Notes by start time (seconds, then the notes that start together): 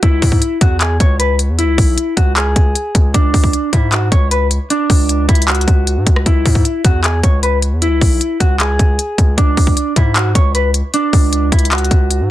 0.03 C#2 E4, kick, closed hi-hat
0.22 G#2, kick, open hi-hat
0.32 kick
0.42 closed hi-hat
0.61 E2 F#4, kick, closed hi-hat
0.81 G#4, clap, closed hi-hat
1.00 C#2 C#5, kick, closed hi-hat
1.19 B4, closed hi-hat
1.39 closed hi-hat
1.49 E2
1.59 E4, closed hi-hat
1.63 C#2
1.78 B1, kick, open hi-hat
1.98 closed hi-hat
2.17 C#2 F#4, kick, closed hi-hat
2.36 G#4, clap, closed hi-hat
2.56 C#2, kick, closed hi-hat
2.75 closed hi-hat
2.95 C#2, kick, closed hi-hat
3.14 C#2 D4, kick, closed hi-hat
3.34 C#2, kick, open hi-hat
3.44 kick
3.53 closed hi-hat
3.73 G#2 E4, kick, closed hi-hat
3.92 F#4, clap, closed hi-hat
4.12 C#2 C#5, kick, closed hi-hat
4.31 B4, closed hi-hat
4.51 closed hi-hat
4.70 D4, closed hi-hat
4.90 C#2, kick, open hi-hat
5.09 closed hi-hat
5.28 C#2 E4, kick, closed hi-hat
5.35 closed hi-hat
5.42 closed hi-hat
5.48 F#4, clap, closed hi-hat
5.55 closed hi-hat
5.61 closed hi-hat
5.68 C#2, kick, closed hi-hat
5.87 closed hi-hat
5.97 G#2
6.07 C#2, kick, closed hi-hat
6.16 cross-stick
6.26 C#2 E4, kick, closed hi-hat
6.46 G#2, kick, open hi-hat
6.55 kick
6.65 closed hi-hat
6.84 E2 F#4, kick, closed hi-hat
7.04 G#4, clap, closed hi-hat
7.24 C#2 C#5, kick, closed hi-hat
7.43 B4, closed hi-hat
7.62 closed hi-hat
7.72 E2
7.82 E4, closed hi-hat
7.87 C#2
8.01 B1, kick, open hi-hat
8.21 closed hi-hat
8.40 C#2 F#4, kick, closed hi-hat
8.60 G#4, clap, closed hi-hat
8.79 C#2, kick, closed hi-hat
8.99 closed hi-hat
9.18 C#2, kick, closed hi-hat
9.38 C#2 D4, kick, closed hi-hat
9.57 C#2, kick, open hi-hat
9.67 kick
9.77 closed hi-hat
9.96 G#2 E4, kick, closed hi-hat
10.16 F#4, clap, closed hi-hat
10.35 C#2 C#5, kick, closed hi-hat
10.55 B4, closed hi-hat
10.74 closed hi-hat
10.94 D4, closed hi-hat
11.13 C#2, kick, open hi-hat
11.33 closed hi-hat
11.52 C#2 E4, kick, closed hi-hat
11.59 closed hi-hat
11.65 closed hi-hat
11.71 F#4, clap, closed hi-hat
11.78 closed hi-hat
11.85 closed hi-hat
11.91 C#2, kick, closed hi-hat
12.11 closed hi-hat
12.20 G#2